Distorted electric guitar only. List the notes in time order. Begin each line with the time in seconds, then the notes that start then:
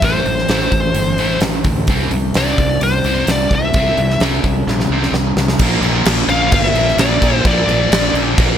0.03 A2 E3 A3
0.26 A2 E3
0.50 A2 E3 A3
0.73 A2 E3
0.95 A2 E3
1.18 A2 E3 A3
1.43 A2 E3
1.66 A2 E3
1.89 C3 G3 C4
2.12 C3 G3
2.36 C3 G3 C4
2.59 C3 G3
2.83 C3 G3
3.05 C3 G3 C4
3.29 C3 G3
3.53 C3 G3
3.76 C3 G3 C4
3.99 C3 G3
4.21 C3 G3 C4
4.45 C3 G3
4.69 C3 G3
4.92 C3 G3 C4
5.15 C3 G3
5.39 C3 G3
5.61 A#2 F3 A#3
5.84 A#2 F3 A#3
6.08 A#2 F3 A#3
6.31 A#2 F3 A#3
6.53 A#2 F3 A#3
6.75 A#2 F3 A#3
6.98 A#2 F3 A#3
7.21 A#2 F3 A#3
7.45 A#2 F3 A#3
7.69 A#2 F3 A#3
7.91 A#2 F3 A#3
8.14 A#2 F3 A#3
8.38 A#2 F3 A#3